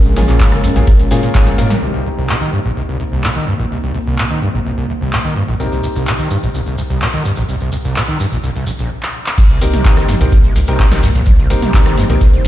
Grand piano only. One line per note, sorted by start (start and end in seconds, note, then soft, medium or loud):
0.16 0.73 A#3 medium
0.16 0.73 C#4 medium
0.16 0.73 F4 medium
0.16 0.73 G#4 loud
0.76 0.85 A#3 medium
0.76 0.85 C#4 medium
0.76 0.85 F4 medium
0.76 0.85 G#4 loud
1.11 1.56 A#3 loud
1.11 1.55 C#4 medium
1.11 1.56 F4 medium
1.11 1.55 G#4 loud
1.58 1.68 A#3 loud
1.58 1.68 C#4 medium
1.58 1.68 F4 medium
1.58 1.68 A#4 loud
1.82 5.57 C4 medium
1.82 5.57 D#4 medium
1.82 5.57 G4 medium
1.82 5.57 A#4 medium
5.60 8.91 C4 medium
5.60 8.91 D#4 medium
5.60 8.91 G4 medium
5.60 8.91 A#4 medium
9.61 10.18 C4 medium
9.61 10.18 D#4 medium
9.61 10.18 G4 medium
9.61 10.18 A#4 loud
10.21 10.30 C4 medium
10.21 10.30 D#4 medium
10.21 10.30 G4 medium
10.21 10.30 A#4 loud
10.68 10.83 C4 medium
10.68 10.83 D#4 medium
10.68 10.83 G4 medium
10.68 10.83 A#4 loud
10.92 11.01 C4 medium
10.92 11.01 D#4 medium
10.92 11.01 G4 medium
10.92 11.01 A#4 medium
11.50 12.07 C4 loud
11.50 12.07 D#4 medium
11.50 12.07 G4 medium
11.50 12.07 A#4 loud
12.10 12.19 C4 medium
12.10 12.19 D#4 medium
12.10 12.19 G4 medium
12.10 12.19 A#4 loud